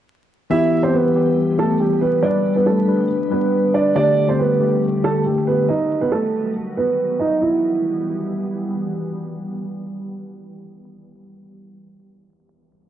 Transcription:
0.50 0.78 E3 loud
0.50 2.22 E3 medium
0.50 5.65 G3 medium
0.50 3.92 B3 medium
0.50 0.78 B3 medium
0.50 0.81 E4 medium
0.50 2.22 G4 medium
0.50 0.79 G4 loud
0.50 0.81 E5 loud
0.82 1.10 E3 medium
0.82 1.11 B3 medium
0.82 0.93 C4 medium
0.82 1.11 G4 medium
0.82 0.92 C5 medium
0.94 1.35 B3 medium
0.94 1.34 B4 medium
1.14 1.89 E3 medium
1.14 1.89 B3 medium
1.14 1.90 G4 medium
1.59 1.78 A3 medium
1.59 1.78 A4 medium
1.80 1.99 G3 medium
1.80 1.99 G4 medium
2.01 2.21 B3 medium
2.01 2.20 B4 medium
2.23 5.65 D3 medium
2.23 2.79 G3 loud
2.23 2.79 D4 medium
2.23 2.54 D4 medium
2.23 5.65 G4 medium
2.23 2.79 B4 loud
2.23 2.53 D5 medium
2.56 2.66 B3 medium
2.56 2.65 B4 medium
2.66 3.07 A3 medium
2.66 3.07 A4 medium
2.87 3.25 G3 medium
2.87 3.25 D4 medium
2.87 3.25 B4 medium
3.30 3.86 G3 medium
3.30 3.72 B3 medium
3.30 3.87 D4 medium
3.30 3.72 B4 medium
3.30 3.87 B4 medium
3.74 3.94 D4 medium
3.74 3.93 D5 medium
3.96 4.24 D3 loud
3.96 5.67 A3 medium
3.96 4.24 A3 medium
3.96 4.27 D4 medium
3.96 4.24 G4 loud
3.96 4.26 D5 loud
4.27 4.56 D3 medium
4.27 4.56 A3 medium
4.27 4.38 C4 medium
4.27 4.56 G4 medium
4.27 4.38 C5 medium
4.39 4.80 B3 medium
4.39 4.80 B4 medium
4.60 5.34 D3 medium
4.60 5.35 A3 medium
4.60 5.35 G4 medium
5.04 5.23 A3 medium
5.04 5.23 A4 medium
5.26 5.45 G3 medium
5.26 5.45 G4 medium
5.47 5.66 B3 medium
5.47 5.66 B4 medium
5.68 7.40 D#3 medium
5.68 7.40 F#3 medium
5.68 7.39 B3 medium
5.68 6.00 D#4 medium
5.68 7.39 F#4 medium
5.68 5.99 D#5 medium
6.01 6.11 B3 medium
6.01 6.11 B4 medium
6.12 6.53 A3 medium
6.12 6.52 A4 medium
6.77 7.18 B3 medium
6.77 7.17 B4 medium
7.19 7.39 D#4 medium
7.19 7.38 D#5 medium
7.41 10.50 E3 medium
7.41 10.50 G3 medium
7.41 10.50 B3 medium
7.41 8.67 E4 medium
7.41 10.50 G4 medium

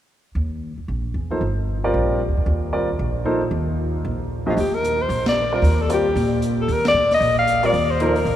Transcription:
0.35 0.75 D#2 medium
0.78 muted upright bass stroke soft
0.88 1.13 A#1 medium
1.14 1.39 E2 medium
1.31 1.40 F3 soft
1.31 1.40 A#3 soft
1.31 1.41 D#4 soft
1.31 1.41 A4 soft
1.31 1.41 C5 medium
1.41 1.91 G1 medium
1.84 2.19 G3 medium
1.84 2.19 C4 medium
1.84 2.19 F4 medium
1.84 2.19 A#4 medium
1.84 2.19 D5 medium
1.94 2.27 A#1 medium
2.28 2.36 D#2 soft
2.37 2.45 E2 medium
2.46 2.97 D#2 medium
2.73 2.88 G3 medium
2.73 2.88 C4 soft
2.73 2.87 F4 soft
2.73 2.88 A#4 medium
2.73 2.87 D5 medium
2.99 3.50 A#1 medium
3.25 3.40 F3 medium
3.25 3.40 A#3 medium
3.25 3.40 D#4 medium
3.25 3.40 A4 medium
3.25 3.40 C5 medium
3.51 4.02 D#2 medium
4.05 4.55 A#1 medium
4.46 4.56 F2 medium
4.46 4.56 A3 soft
4.46 4.56 D4 medium
4.46 4.54 F4 medium
4.46 4.57 G4 medium
4.46 4.57 C5 medium
4.46 4.57 D#5 medium
4.57 5.07 D#2 medium
4.57 4.76 G4 medium
4.57 open hi-hat soft
4.74 5.03 A#4 medium
4.84 closed hi-hat soft
5.01 5.27 C5 medium
5.09 5.60 A#1 medium
5.09 open hi-hat soft
5.26 5.52 D5 medium
5.26 snare medium
5.26 ride medium
5.52 5.62 G3 medium
5.52 5.62 C4 soft
5.52 5.62 F4 soft
5.52 5.62 A#4 medium
5.52 5.83 A#4 medium
5.52 5.62 D5 medium
5.62 6.12 D#2 medium
5.62 open hi-hat soft
5.82 5.91 A4 medium
5.89 6.03 G3 medium
5.89 6.04 C4 soft
5.89 6.04 F4 soft
5.89 6.40 G4 medium
5.89 6.03 A#4 soft
5.89 6.04 D5 medium
5.89 closed hi-hat soft
6.16 6.65 A#2 medium
6.16 open hi-hat soft
6.42 closed hi-hat soft
6.61 6.75 A4 medium
6.68 6.92 D#2 medium
6.68 open hi-hat soft
6.73 6.86 A#4 medium
6.85 7.10 D5 medium
6.85 snare medium
6.85 ride medium
6.94 7.18 A#2 medium
7.11 7.37 D#5 medium
7.11 snare soft
7.11 open hi-hat soft
7.21 7.70 A#1 medium
7.21 open hi-hat soft
7.38 7.67 F5 medium
7.47 closed hi-hat soft
7.63 7.72 G3 medium
7.63 7.72 C4 medium
7.63 7.73 F4 medium
7.63 7.72 A#4 medium
7.63 7.72 D5 medium
7.63 7.92 D5 medium
7.63 open hi-hat soft
7.73 8.23 D#2 medium
7.73 open hi-hat soft
7.91 8.04 C5 medium
8.00 8.14 F3 medium
8.00 8.14 A#3 medium
8.00 8.14 D#4 medium
8.00 8.14 A4 medium
8.00 8.36 A#4 medium
8.00 8.14 C5 medium
8.00 closed hi-hat soft
8.16 open hi-hat soft
8.25 8.36 A#1 medium
8.25 open hi-hat soft

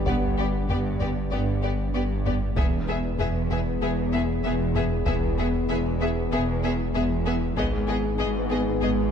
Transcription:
0.00 2.58 G1 medium
0.00 2.57 G3 medium
0.00 2.22 B3 medium
0.00 2.53 B3 medium
0.00 2.53 D4 medium
0.00 2.22 G4 medium
0.00 2.53 D5 medium
0.00 0.65 B5 medium
0.06 0.62 G1 medium
0.06 0.62 G2 medium
0.06 0.15 B3 medium
0.06 0.15 G4 medium
0.06 0.14 D5 medium
0.06 1.90 F#5 medium
0.06 taiko medium
0.38 0.46 B3 soft
0.38 0.46 G4 soft
0.38 0.46 D5 medium
0.69 1.24 G1 medium
0.69 1.25 G2 medium
0.69 0.78 B3 medium
0.69 0.77 G4 soft
0.69 0.77 D5 medium
0.69 taiko low medium
1.00 1.09 B3 soft
1.00 1.08 G4 medium
1.00 1.08 D5 soft
1.00 taiko low soft
1.31 1.87 G1 medium
1.31 1.87 G2 medium
1.31 1.40 B3 medium
1.31 1.40 G4 soft
1.31 1.39 D5 soft
1.62 1.71 B3 soft
1.62 1.71 G4 soft
1.62 1.70 D5 soft
1.94 2.49 G1 medium
1.94 2.49 G2 medium
1.94 2.02 B3 soft
1.94 2.02 G4 soft
1.94 2.02 D5 soft
2.25 2.34 B3 soft
2.25 2.33 G4 soft
2.25 2.34 D5 soft
2.25 taiko low medium
2.56 7.59 E1 medium
2.56 3.12 E1 medium
2.56 3.12 E2 medium
2.56 7.57 G#3 medium
2.56 7.52 B3 medium
2.56 2.64 B3 medium
2.56 7.57 E4 medium
2.56 7.53 G#4 medium
2.56 2.65 G#4 medium
2.56 7.56 B4 medium
2.56 2.65 E5 medium
2.56 taiko medium
2.87 2.95 B3 medium
2.87 2.96 G#4 soft
2.87 2.97 E5 medium
3.19 3.74 E1 medium
3.19 3.74 E2 medium
3.19 3.27 B3 medium
3.19 3.27 G#4 soft
3.19 3.28 E5 medium
3.19 taiko low medium
3.50 3.59 B3 soft
3.50 3.58 G#4 medium
3.50 3.59 E5 soft
3.50 taiko low soft
3.81 4.37 E1 medium
3.81 4.37 E2 medium
3.81 3.90 B3 medium
3.81 3.90 G#4 medium
3.81 3.90 E5 soft
4.12 4.21 B3 soft
4.12 4.21 G#4 medium
4.12 4.20 E5 medium
4.43 4.99 E1 medium
4.43 4.99 E2 medium
4.43 4.53 B3 medium
4.43 4.53 G#4 soft
4.43 4.52 E5 medium
4.75 4.84 B3 medium
4.75 4.83 G#4 medium
4.75 4.83 E5 medium
4.75 taiko low medium
5.06 5.62 E1 medium
5.06 5.62 E2 medium
5.06 5.15 B3 medium
5.06 5.14 G#4 medium
5.06 5.14 E5 medium
5.06 taiko medium
5.38 5.46 B3 medium
5.38 5.46 G#4 medium
5.38 5.46 E5 medium
5.69 6.24 E1 medium
5.69 6.24 E2 medium
5.69 5.78 B3 medium
5.69 5.78 G#4 medium
5.69 5.77 E5 medium
6.00 6.08 B3 medium
6.00 6.09 G#4 medium
6.00 6.09 E5 medium
6.31 6.87 E1 medium
6.31 6.87 E2 medium
6.31 6.40 B3 medium
6.31 6.40 G#4 medium
6.31 6.40 E5 medium
6.63 6.71 B3 medium
6.63 6.71 G#4 medium
6.63 6.72 E5 medium
6.94 7.50 E1 medium
6.94 7.49 E2 medium
6.94 7.03 B3 medium
6.94 7.03 G#4 medium
6.94 7.03 E5 medium
7.26 7.34 B3 medium
7.26 7.34 G#4 medium
7.26 7.34 E5 medium
7.56 8.12 G#1 medium
7.56 9.11 G#1 medium
7.56 8.12 G#2 medium
7.56 9.11 G#3 medium
7.56 9.11 B3 medium
7.56 7.65 B3 medium
7.56 9.11 B3 medium
7.56 9.11 D#4 medium
7.56 7.64 G#4 medium
7.56 9.11 G#4 medium
7.56 9.11 B4 medium
7.56 7.66 D#5 medium
7.56 taiko medium
7.88 7.97 B3 medium
7.88 7.96 G#4 medium
7.88 7.97 D#5 medium
8.19 8.75 G#1 medium
8.19 8.74 G#2 medium
8.19 8.28 B3 medium
8.19 8.27 G#4 medium
8.19 8.28 D#5 medium
8.50 8.58 B3 medium
8.50 8.58 G#4 medium
8.50 8.59 D#5 soft
8.81 9.11 G#1 medium
8.81 9.11 G#2 medium
8.81 8.90 B3 medium
8.81 8.89 G#4 medium
8.81 8.90 D#5 medium

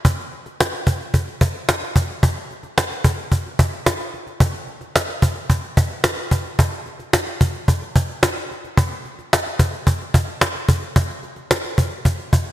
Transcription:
0.05 cajon bass medium
0.19 cajon slap soft
0.33 cajon slap soft
0.46 cajon slap soft
0.60 cajon slap medium
0.73 cajon slap soft
0.87 cajon bass medium
1.01 cajon slap soft
1.14 cajon bass medium
1.28 cajon slap soft
1.41 cajon bass medium
1.55 cajon slap soft
1.69 cajon slap medium
1.83 cajon slap soft
1.96 cajon bass medium
2.10 cajon slap soft
2.23 cajon bass medium
2.37 cajon slap soft
2.51 cajon slap soft
2.63 cajon slap soft
2.78 cajon slap medium
2.91 cajon slap soft
3.04 cajon bass medium
3.18 cajon slap soft
3.32 cajon bass medium
3.46 cajon slap soft
3.59 cajon bass medium
3.73 cajon slap soft
3.86 cajon slap medium
4.00 cajon slap soft
4.14 cajon slap soft
4.27 cajon slap soft
4.40 cajon bass medium
4.54 cajon slap soft
4.67 cajon slap soft
4.81 cajon slap soft
4.96 cajon slap medium
5.09 cajon slap soft
5.22 cajon bass medium
5.36 cajon slap soft
5.50 cajon bass medium
5.64 cajon slap soft
5.77 cajon bass medium
5.91 cajon slap soft
6.04 cajon slap loud
6.17 cajon slap soft
6.31 cajon bass medium
6.45 cajon slap soft
6.59 cajon bass loud
6.72 cajon slap soft
6.86 cajon slap soft
6.99 cajon slap soft
7.13 cajon slap medium
7.27 cajon slap soft
7.41 cajon bass medium
7.55 cajon slap soft
7.68 cajon bass medium
7.82 cajon slap soft
7.96 cajon bass medium
8.09 cajon slap soft
8.23 cajon slap loud
8.36 cajon slap soft
8.51 cajon slap soft
8.64 cajon slap soft
8.77 cajon bass loud
8.91 cajon slap soft
9.05 cajon slap soft
9.19 cajon slap soft
9.33 cajon slap loud
9.46 cajon slap soft
9.59 cajon bass medium
9.73 cajon slap soft
9.87 cajon bass medium
10.01 cajon slap soft
10.14 cajon bass medium
10.28 cajon slap soft
10.41 cajon slap medium
10.55 cajon slap soft
10.69 cajon bass medium
10.82 cajon slap soft
10.96 cajon bass loud
11.10 cajon slap soft
11.23 cajon slap soft
11.36 cajon slap soft
11.51 cajon slap loud
11.64 cajon slap soft
11.78 cajon bass medium
11.91 cajon slap soft
12.05 cajon bass medium
12.19 cajon slap soft
12.33 cajon bass medium
12.46 cajon slap soft

